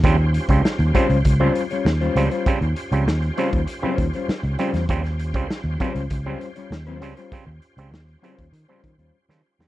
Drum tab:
HH |x-xx-xxxx-xx-xxx|xxxx-xxxx-xx-xxx|xxxx--xxx-xx-xxx|x-xx-xxxx-xx----|
SD |----o-------o---|----o-------o--o|-o--o-------o---|----o--------o-o|
BD |o--o--o-o-------|o------o--o-----|o--o--o-o-------|o------o--o-----|